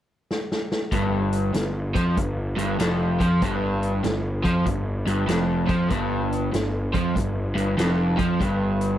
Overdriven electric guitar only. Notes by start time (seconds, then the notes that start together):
0.93 G2
1.54 G2
1.95 F3
2.17 G2
2.57 G2
2.80 F2
3.20 F3
3.42 G2
4.04 G2
4.44 F3
4.66 G2
5.07 G2
5.27 F2
5.68 F3
5.90 G2
6.52 G2
6.94 F3
7.15 G2
7.55 G2
7.78 F2
8.17 F3
8.40 G2